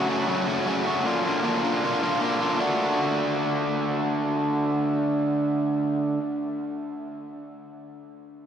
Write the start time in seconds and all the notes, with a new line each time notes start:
0.08 F#2 C#3 F#3 A3 C#4 F#4
0.27 F#2 C#3 F#3 A3 C#4 F#4
0.47 F#2 C#3 F#3 A3 C#4 F#4
0.66 F#2 C#3 F#3 A3 C#4 F#4
0.86 F#2 C#3 F#3 A3 C#4 F#4
1.05 A#2 D3 A#3 D4 F4
1.24 A#2 D3 A#3 D4 F4
1.43 A#2 D3 A#3 D4 F4
1.62 A#2 D3 A#3 D4 F4
1.83 A#2 D3 A#3 D4 F4
2.02 A#2 D3 A#3 D4 F4
2.20 A#2 D3 A#3 D4 F4
2.40 A#2 D3 A#3 D4 F4
2.57 D3 A3 D4
2.62 F#4